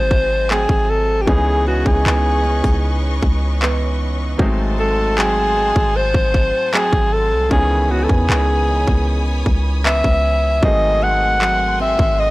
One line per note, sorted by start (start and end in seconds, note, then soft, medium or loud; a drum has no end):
0.00 0.66 G#1 loud
0.00 1.28 G#2 medium
0.00 0.48 F#3 medium
0.00 1.23 F#3 medium
0.00 1.25 G#3 medium
0.00 0.49 A3 medium
0.00 1.23 A3 medium
0.00 0.50 C4 medium
0.00 1.24 C4 medium
0.00 1.24 D#4 medium
0.00 1.24 F#4 medium
0.00 0.53 C5 loud
0.00 1.24 C5 medium
0.00 1.24 G#5 medium
0.00 1.24 A5 medium
0.11 kick medium
0.50 1.35 F#3 medium
0.50 1.36 A3 medium
0.50 1.36 C4 medium
0.50 0.91 G#4 medium
0.50 clap loud
0.69 1.25 G#1 medium
0.69 kick medium
0.90 1.23 A4 medium
1.22 1.30 G4 medium
1.26 1.84 C#2 medium
1.26 4.39 C#3 medium
1.26 4.34 E3 medium
1.26 4.35 B3 medium
1.26 4.35 C#4 medium
1.26 4.36 D#4 medium
1.26 1.67 G#4 medium
1.26 4.36 G#4 medium
1.26 4.36 B4 medium
1.26 4.36 C#5 medium
1.26 4.36 D#5 medium
1.26 4.36 C#6 medium
1.26 kick loud
1.66 2.05 B3 medium
1.66 1.89 F#4 medium
1.86 2.05 C#2 loud
1.86 3.03 G#4 medium
1.86 kick medium
2.05 2.62 C#2 loud
2.05 3.60 E3 medium
2.05 3.61 B3 medium
2.05 2.44 D#4 medium
2.05 clap loud
2.44 2.64 C#4 medium
2.64 3.20 C#2 loud
2.64 3.61 D#4 medium
2.64 kick medium
3.23 4.35 C#2 loud
3.23 kick medium
3.61 4.47 E3 medium
3.61 4.47 B3 medium
3.61 4.81 D#4 medium
3.61 clap loud
4.38 5.72 G#1 loud
4.38 7.51 G#2 medium
4.38 7.46 F#3 medium
4.38 7.48 G#3 medium
4.38 7.47 A3 medium
4.38 7.47 C4 medium
4.38 7.48 D#4 medium
4.38 7.48 F#5 medium
4.38 7.48 G#5 medium
4.38 7.48 A5 medium
4.38 7.48 C6 medium
4.38 kick loud
4.78 5.17 A3 medium
4.78 5.20 A4 medium
5.17 6.72 F#3 medium
5.17 6.72 A3 medium
5.17 5.55 C4 medium
5.17 5.98 G#4 loud
5.17 clap loud
5.56 6.73 C4 medium
5.76 6.13 G#1 medium
5.76 kick medium
5.96 6.76 C5 loud
6.14 6.52 G#1 loud
6.14 kick medium
6.34 kick medium
6.73 7.59 F#3 medium
6.73 7.59 A3 medium
6.73 7.59 C4 medium
6.73 7.15 G#4 medium
6.73 clap loud
6.93 7.34 G#1 loud
6.93 kick medium
7.13 7.52 A4 medium
7.32 7.50 C2 loud
7.50 8.07 C#2 loud
7.50 10.63 C#3 medium
7.50 10.59 D#3 medium
7.50 10.58 B3 medium
7.50 10.59 C#4 medium
7.50 7.92 G#4 medium
7.50 10.60 G#4 medium
7.50 10.59 C#5 medium
7.50 10.60 G#5 medium
7.50 10.60 B5 medium
7.50 10.60 D#6 medium
7.50 kick loud
7.56 10.61 E3 medium
7.90 8.28 B3 medium
7.90 8.05 F#4 medium
8.04 8.12 A4 medium
8.09 8.28 E2 loud
8.09 9.27 G#4 medium
8.09 kick loud
8.29 8.85 C#2 loud
8.29 9.84 E3 medium
8.29 9.84 B3 medium
8.29 8.67 D#4 medium
8.29 clap loud
8.68 9.88 D#4 medium
8.88 9.44 C#2 medium
8.88 kick medium
9.46 10.02 C#2 loud
9.46 kick medium
9.85 10.70 E3 medium
9.85 10.71 B3 medium
9.85 10.66 E5 loud
9.85 clap loud
10.04 10.61 C#2 loud
10.04 kick medium
10.61 11.95 G#1 loud
10.61 12.30 G#2 medium
10.61 12.30 D#3 medium
10.61 12.30 F#3 medium
10.61 12.30 A3 medium
10.61 12.30 C4 medium
10.61 12.30 G#4 medium
10.61 11.05 D#5 loud
10.61 12.30 F#5 medium
10.61 12.30 G#5 medium
10.61 12.30 C6 medium
10.61 kick loud
11.02 11.40 A3 medium
11.02 11.80 F#5 loud
11.41 12.30 F#3 medium
11.41 12.30 A3 medium
11.41 11.78 C4 medium
11.41 clap loud
11.80 12.30 C4 medium
11.80 12.22 E5 medium
11.99 12.30 G#1 medium
11.99 kick medium
12.20 12.30 D#5 loud